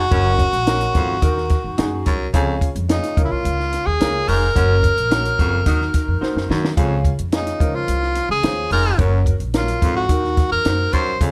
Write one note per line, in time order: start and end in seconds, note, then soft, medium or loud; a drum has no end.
0.00 2.07 F#4 loud
0.11 0.42 F#1 loud
0.11 0.34 F#2 medium
0.11 0.44 C#4 medium
0.11 0.44 F#4 medium
0.11 0.45 A#4 loud
0.11 kick loud
0.11 closed hi-hat loud
0.39 kick medium
0.39 closed hi-hat medium
0.53 0.84 A#1 medium
0.53 closed hi-hat medium
0.67 1.00 C#4 medium
0.67 1.00 F#4 medium
0.67 1.00 A#4 medium
0.67 snare loud
0.67 closed hi-hat medium
0.81 snare soft
0.81 closed hi-hat medium
0.95 1.16 G#1 loud
0.95 1.17 F2 medium
0.95 kick medium
0.95 closed hi-hat medium
1.22 1.53 D#2 loud
1.22 2.02 D#3 medium
1.22 1.55 D#4 medium
1.22 1.56 F#4 medium
1.22 1.56 A#4 loud
1.22 kick loud
1.22 closed hi-hat medium
1.37 snare soft
1.49 kick loud
1.49 snare soft
1.49 closed hi-hat medium
1.64 1.75 F2 medium
1.78 1.99 F#2 medium
1.78 2.11 D#4 medium
1.78 2.11 F#4 medium
1.78 2.11 G#4 loud
1.78 snare loud
1.78 closed hi-hat medium
2.06 2.27 C2 medium
2.06 2.28 F#2 medium
2.06 kick medium
2.06 closed hi-hat medium
2.34 2.65 C#2 loud
2.34 2.56 F2 medium
2.34 3.13 C#3 medium
2.34 2.67 C#4 loud
2.34 2.67 F4 loud
2.34 2.67 G#4 loud
2.34 kick loud
2.34 closed hi-hat loud
2.61 kick medium
2.61 closed hi-hat medium
2.75 2.96 F2 medium
2.75 closed hi-hat medium
2.88 3.15 C#4 medium
2.88 3.22 D#4 medium
2.88 3.15 F4 medium
2.88 3.17 G#4 medium
2.88 snare loud
2.88 closed hi-hat medium
3.03 snare soft
3.03 closed hi-hat medium
3.17 3.27 C#2 loud
3.17 3.96 C#3 medium
3.17 3.83 C#4 medium
3.17 3.83 F4 medium
3.17 3.84 A#4 medium
3.17 kick loud
3.17 closed hi-hat medium
3.24 3.33 E4 medium
3.31 3.41 C2 medium
3.31 3.88 F4 medium
3.45 3.76 C#2 medium
3.45 closed hi-hat medium
3.60 snare soft
3.73 snare soft
3.73 closed hi-hat medium
3.86 3.97 D#2 medium
3.86 4.30 G#4 loud
4.00 4.21 C#2 loud
4.00 4.33 C#4 medium
4.00 4.33 F4 medium
4.00 4.34 A#4 medium
4.00 snare loud
4.00 closed hi-hat medium
4.28 4.49 F1 medium
4.28 4.50 G#2 medium
4.28 6.50 A#4 loud
4.28 open hi-hat medium
4.55 4.87 F#1 loud
4.55 4.78 F#2 medium
4.55 4.89 C#4 medium
4.55 4.89 F#4 medium
4.55 4.89 A#4 loud
4.55 kick loud
4.55 closed hi-hat loud
4.83 kick medium
4.83 closed hi-hat medium
4.97 5.28 A#1 medium
4.97 closed hi-hat medium
5.10 5.44 C#4 medium
5.10 5.44 F#4 medium
5.10 5.44 A#4 medium
5.10 snare loud
5.10 closed hi-hat medium
5.25 snare soft
5.25 closed hi-hat medium
5.38 5.60 F#1 medium
5.38 5.61 F2 medium
5.38 5.50 A#3 medium
5.38 5.50 F#4 medium
5.38 5.50 C#5 medium
5.38 kick loud
5.38 closed hi-hat medium
5.66 5.87 D#2 loud
5.66 6.46 D#3 medium
5.66 5.84 F#3 loud
5.66 5.99 D#4 medium
5.66 5.84 D#4 loud
5.66 6.00 F#4 medium
5.66 5.84 A#4 loud
5.66 6.00 A#4 medium
5.66 kick loud
5.66 closed hi-hat medium
5.81 snare soft
5.94 muted upright bass stroke medium
5.94 kick medium
5.94 snare soft
5.94 closed hi-hat medium
6.08 6.18 F2 medium
6.21 6.55 D#4 medium
6.21 6.55 F#4 medium
6.21 6.55 C5 loud
6.21 muted upright bass stroke soft
6.21 snare medium
6.36 6.46 F#2 medium
6.36 snare medium
6.50 6.72 F#2 medium
6.50 6.70 D#3 loud
6.50 snare medium
6.65 snare medium
6.77 7.08 C#2 loud
6.77 7.00 F2 medium
6.77 7.56 C#3 medium
6.77 7.10 C#4 loud
6.77 7.10 F4 loud
6.77 7.10 G#4 loud
6.77 kick loud
6.77 closed hi-hat loud
7.05 kick medium
7.05 closed hi-hat medium
7.19 7.50 F2 medium
7.19 closed hi-hat medium
7.32 7.58 C#4 medium
7.32 7.76 D#4 medium
7.32 7.59 F4 medium
7.32 7.60 G#4 medium
7.32 snare loud
7.32 closed hi-hat medium
7.47 snare soft
7.47 closed hi-hat medium
7.60 7.81 C#2 medium
7.60 8.40 F3 medium
7.60 8.27 C#4 medium
7.60 8.27 F4 medium
7.60 8.27 A#4 medium
7.60 kick loud
7.60 closed hi-hat medium
7.75 8.30 F4 medium
7.88 8.19 C2 medium
7.88 closed hi-hat medium
8.03 snare soft
8.15 snare soft
8.15 closed hi-hat medium
8.29 8.40 C#2 medium
8.29 8.69 G#4 loud
8.43 8.64 D#2 loud
8.43 8.77 C#4 medium
8.43 8.77 F4 medium
8.43 8.77 C5 medium
8.43 snare loud
8.43 closed hi-hat medium
8.71 8.92 F1 medium
8.71 8.94 G#2 medium
8.71 8.98 A#4 loud
8.71 open hi-hat medium
8.98 9.30 F#1 loud
8.98 9.21 F#2 medium
8.98 9.32 C#4 loud
8.98 9.32 F#4 loud
8.98 9.32 A#4 loud
8.98 kick loud
8.98 closed hi-hat loud
9.26 kick medium
9.26 closed hi-hat medium
9.40 9.71 A#1 medium
9.40 closed hi-hat medium
9.54 9.87 F#3 medium
9.54 9.87 C#4 medium
9.54 9.94 F4 medium
9.54 9.88 A#4 medium
9.54 snare loud
9.54 closed hi-hat medium
9.68 snare soft
9.68 closed hi-hat medium
9.82 10.03 G#1 loud
9.82 10.04 F2 medium
9.82 kick loud
9.82 closed hi-hat medium
9.96 10.48 F#4 medium
10.09 10.40 D#2 loud
10.09 10.89 D#3 medium
10.09 10.43 D#4 medium
10.09 10.43 F#4 medium
10.09 10.43 A#4 medium
10.09 kick loud
10.09 closed hi-hat medium
10.24 snare soft
10.37 kick loud
10.37 snare soft
10.37 closed hi-hat medium
10.51 10.62 F2 medium
10.51 10.94 A#4 loud
10.65 10.86 F#2 medium
10.65 10.99 D#4 medium
10.65 10.99 F#4 medium
10.65 10.99 C5 medium
10.65 snare loud
10.65 closed hi-hat medium
10.93 11.14 C2 medium
10.93 11.15 F#2 medium
10.93 11.21 C5 loud
10.93 kick medium
10.93 closed hi-hat medium
11.21 11.31 C#2 loud
11.21 11.31 F2 medium
11.21 11.31 C#3 medium
11.21 11.31 C#4 loud
11.21 11.31 F4 medium
11.21 11.31 G#4 loud
11.21 kick loud
11.21 closed hi-hat loud